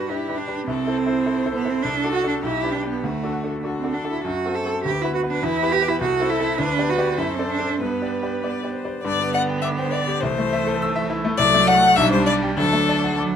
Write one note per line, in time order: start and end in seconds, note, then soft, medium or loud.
0.00 0.70 G2 soft
0.00 0.09 D4 soft
0.00 0.10 F#4 medium
0.00 0.10 G4 soft
0.00 0.10 B4 soft
0.00 0.11 B4 medium
0.09 0.27 D4 soft
0.09 0.39 E4 medium
0.09 0.68 G4 medium
0.09 0.27 G4 soft
0.09 0.27 B4 soft
0.29 0.46 D4 soft
0.29 0.46 G4 soft
0.29 0.46 B4 soft
0.37 0.66 D4 medium
0.37 0.60 B4 medium
0.48 0.65 D4 soft
0.48 0.66 G4 soft
0.48 0.66 B4 soft
0.67 0.86 C2 medium
0.67 1.53 C4 medium
0.67 0.99 A4 medium
0.87 1.05 E4 soft
0.87 1.05 A4 soft
0.87 1.05 C5 soft
0.97 1.19 A4 medium
0.97 1.87 C5 medium
1.06 1.24 E4 soft
1.06 1.24 A4 soft
1.06 1.25 C5 medium
1.26 1.44 E4 medium
1.26 1.44 A4 soft
1.26 1.44 C5 medium
1.46 1.63 E4 soft
1.46 1.63 A4 soft
1.46 1.64 C5 medium
1.54 1.71 B3 medium
1.54 1.76 A4 medium
1.65 1.82 E4 soft
1.65 1.83 A4 soft
1.65 1.83 C5 medium
1.70 1.84 C4 medium
1.83 2.03 C2 medium
1.83 2.12 D4 medium
1.83 2.43 A4 medium
2.04 2.21 D4 soft
2.04 2.21 F#4 soft
2.04 2.22 A4 soft
2.13 2.27 F#4 medium
2.13 2.35 F#5 medium
2.24 2.41 D4 soft
2.24 2.41 F#4 soft
2.24 2.42 A4 medium
2.28 2.34 D4 medium
2.42 2.62 B1 medium
2.42 2.73 E4 medium
2.42 3.02 G4 medium
2.63 2.81 D4 soft
2.63 2.81 G4 soft
2.63 2.82 B4 soft
2.72 2.87 D4 medium
2.72 2.95 G5 medium
2.83 3.01 D4 soft
2.83 3.01 G4 soft
2.83 3.02 B4 soft
2.90 3.05 B3 medium
3.03 3.23 D2 medium
3.03 3.64 A3 medium
3.03 3.56 F#4 medium
3.23 3.41 D4 soft
3.23 3.41 F#4 soft
3.23 3.42 A4 soft
3.32 3.55 F#5 soft
3.44 3.62 D4 soft
3.44 3.62 F#4 soft
3.44 3.62 A4 soft
3.63 3.82 D4 soft
3.63 3.91 F#4 medium
3.63 3.82 F#4 soft
3.63 3.82 A4 soft
3.79 3.95 C4 medium
3.83 4.02 D4 soft
3.83 4.02 F#4 soft
3.83 4.03 A4 soft
3.93 4.09 D4 medium
3.93 4.23 A4 medium
3.93 4.16 F#5 soft
4.04 4.22 D4 soft
4.04 4.23 F#4 soft
4.04 4.23 A4 soft
4.10 4.23 E4 medium
4.24 4.44 F#2 medium
4.24 4.57 F#4 medium
4.45 4.63 C4 soft
4.45 4.63 F#4 soft
4.45 4.63 A4 soft
4.54 4.84 A4 medium
4.54 4.76 C5 medium
4.65 4.82 C4 soft
4.65 4.83 F#4 soft
4.65 4.83 A4 soft
4.84 5.04 D2 medium
4.84 5.03 G4 medium
4.84 6.02 B4 medium
5.02 5.21 B3 soft
5.02 5.14 E4 medium
5.02 5.22 F#4 soft
5.02 5.22 B4 soft
5.14 5.20 F#4 medium
5.14 5.35 B4 medium
5.23 5.41 B3 soft
5.23 5.41 F#4 soft
5.23 5.41 B4 medium
5.31 5.45 D4 medium
5.43 5.62 E2 medium
5.43 5.73 E4 loud
5.62 5.80 B3 medium
5.62 5.80 G4 medium
5.62 5.80 B4 medium
5.71 5.93 G4 medium
5.71 5.90 G4 loud
5.81 5.99 B3 medium
5.81 5.99 G4 medium
5.81 5.99 B4 medium
5.88 6.01 E4 medium
6.00 6.20 C2 medium
6.00 6.31 F#4 medium
6.00 6.58 A4 medium
6.20 6.37 C4 medium
6.20 6.38 E4 medium
6.20 6.38 A4 medium
6.30 6.60 E4 medium
6.30 6.51 A4 medium
6.39 6.57 C4 medium
6.39 6.57 E4 medium
6.39 6.57 A4 medium
6.58 6.78 D2 medium
6.58 6.91 D4 loud
6.58 7.20 B4 medium
6.58 7.19 B4 medium
6.78 6.96 B3 soft
6.78 6.96 G4 soft
6.78 6.96 D5 medium
6.89 7.20 F#4 medium
6.98 7.16 B3 soft
6.98 7.16 G4 medium
6.98 7.17 D5 medium
7.18 7.38 F#2 medium
7.18 7.37 E4 medium
7.18 7.79 A4 medium
7.18 7.82 C5 medium
7.36 7.49 C4 medium
7.36 7.57 C4 soft
7.36 7.58 A4 soft
7.36 7.58 D5 soft
7.50 7.80 D4 medium
7.59 7.78 C4 soft
7.59 7.78 A4 soft
7.59 7.79 D5 soft
7.80 8.01 G2 medium
7.80 8.73 B3 medium
7.80 8.35 B4 medium
7.80 8.84 B4 medium
8.02 8.20 B3 soft
8.02 8.21 G4 soft
8.02 8.21 D5 soft
8.22 8.41 B3 soft
8.22 8.41 G4 soft
8.22 8.41 D5 soft
8.42 8.62 B3 soft
8.42 8.62 G4 soft
8.42 8.71 D5 medium
8.42 8.62 D5 soft
8.63 8.82 B3 soft
8.63 8.82 G4 soft
8.63 8.82 D5 soft
8.73 9.03 C5 medium
8.84 9.02 B3 soft
8.84 9.02 G4 soft
8.84 9.03 D5 soft
9.04 10.19 G2 medium
9.04 10.24 D3 medium
9.04 10.24 B3 medium
9.04 9.32 D5 loud
9.20 9.43 B3 medium
9.34 9.58 D5 medium
9.34 9.42 F#5 loud
9.49 9.73 G5 medium
9.62 9.68 E5 medium
9.62 9.87 D6 medium
9.79 9.92 C5 medium
9.79 10.02 G5 medium
9.91 10.23 D5 medium
9.91 10.17 D5 medium
10.07 10.22 G4 medium
10.21 11.35 C2 medium
10.21 11.38 E3 medium
10.21 11.38 A3 medium
10.21 11.09 C5 loud
10.38 10.61 A3 medium
10.53 10.75 E5 medium
10.67 10.90 A4 medium
10.82 11.05 E6 medium
10.96 11.19 E5 medium
11.10 11.33 E4 medium
11.25 11.39 A3 medium
11.37 11.95 C2 medium
11.37 11.93 F#3 loud
11.37 11.98 A3 medium
11.37 11.69 D5 loud
11.54 11.77 A3 medium
11.67 11.91 D5 medium
11.67 11.98 F#5 loud
11.83 11.97 F#5 medium
11.96 12.56 B1 loud
11.96 12.59 G3 medium
11.96 12.57 D4 medium
11.96 12.11 E5 loud
12.12 12.36 G3 medium
12.12 12.25 C5 loud
12.26 12.34 D5 loud
12.26 12.51 D5 medium
12.43 12.58 G5 medium
12.57 13.36 D2 medium
12.57 13.13 F#3 medium
12.57 13.36 D4 medium
12.57 13.18 A4 loud
12.73 12.98 A3 medium
12.89 13.13 D5 medium
13.04 13.28 F#5 medium
13.19 13.36 F#3 medium
13.19 13.36 D6 medium